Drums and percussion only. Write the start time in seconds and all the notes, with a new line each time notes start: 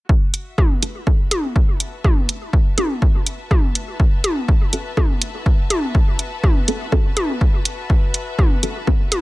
0.09 kick
0.34 closed hi-hat
0.58 kick, high tom
0.83 closed hi-hat
1.07 kick
1.31 closed hi-hat, high tom
1.56 kick
1.80 closed hi-hat
2.04 kick, high tom
2.29 closed hi-hat
2.53 kick
2.78 closed hi-hat, high tom
3.02 kick
3.26 closed hi-hat
3.51 kick, high tom
3.75 closed hi-hat
4.00 kick
4.24 closed hi-hat, high tom
4.48 kick
4.73 closed hi-hat
4.97 kick, high tom
5.22 closed hi-hat
5.46 kick
5.70 closed hi-hat, high tom
5.95 kick
6.19 closed hi-hat
6.44 kick, high tom
6.68 closed hi-hat
6.92 kick
7.17 closed hi-hat, high tom
7.41 kick
7.65 closed hi-hat
7.90 kick
8.14 closed hi-hat
8.39 kick, high tom
8.63 closed hi-hat
8.87 kick
9.12 closed hi-hat, high tom